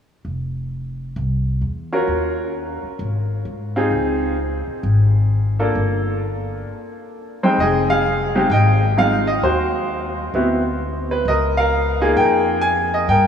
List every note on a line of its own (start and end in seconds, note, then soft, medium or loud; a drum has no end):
0.25 1.13 F1 medium
1.16 1.59 C2 medium
1.61 2.05 E2 medium
1.92 2.51 C#4 medium
1.92 2.51 F4 soft
1.92 2.51 F#4 soft
1.92 2.51 A#4 medium
2.07 2.80 D#2 medium
2.83 muted upright bass stroke soft
2.99 3.42 G#1 medium
3.45 3.88 G#2 medium
3.76 4.35 C4 medium
3.76 4.35 D#4 medium
3.76 4.35 F4 medium
3.76 4.35 G#4 medium
3.91 4.64 C#2 medium
4.67 muted upright bass stroke soft
4.83 5.71 G#1 medium
5.59 6.18 A#3 medium
5.59 6.18 D4 soft
5.59 6.18 F4 soft
5.59 6.18 A4 medium
5.75 6.63 G1 medium
7.43 8.02 F2 medium
7.43 8.02 G#3 soft
7.43 8.02 C4 soft
7.43 8.02 D#4 soft
7.43 7.60 C5 medium
7.43 8.02 G5 medium
7.58 8.46 F1 medium
7.58 7.90 G#4 medium
7.58 7.91 D#5 medium
7.90 8.78 G#4 medium
7.90 8.53 F5 medium
8.35 8.49 G#3 medium
8.35 8.49 C4 medium
8.35 8.49 D#4 soft
8.35 8.50 G4 medium
8.50 9.38 G#1 medium
8.50 9.26 D#5 medium
8.50 8.98 G5 medium
8.97 9.24 G#3 soft
8.97 9.24 C4 soft
8.97 9.24 D#4 soft
8.97 9.24 F4 medium
8.97 9.28 F5 medium
9.27 9.43 D#5 medium
9.42 10.30 D#2 medium
9.42 10.34 F#4 soft
9.42 10.76 C5 medium
10.34 11.21 D2 medium
10.34 10.61 B3 soft
10.34 10.61 C4 soft
10.34 10.62 E4 soft
10.34 10.62 F#4 soft
11.11 11.27 B4 medium
11.25 12.13 C#2 medium
11.25 11.58 D#5 medium
11.30 11.58 A#4 medium
11.57 12.18 A#4 medium
11.57 12.20 F5 medium
12.01 12.60 A#3 medium
12.01 12.60 D#4 medium
12.01 12.60 F4 medium
12.01 12.60 G#4 medium
12.17 13.05 F2 medium
12.17 13.06 A#4 medium
12.17 12.64 G5 medium
12.61 12.93 G#5 medium
12.94 13.10 D#5 medium
13.08 13.27 G2 medium
13.08 13.27 A#4 medium
13.08 13.27 G5 medium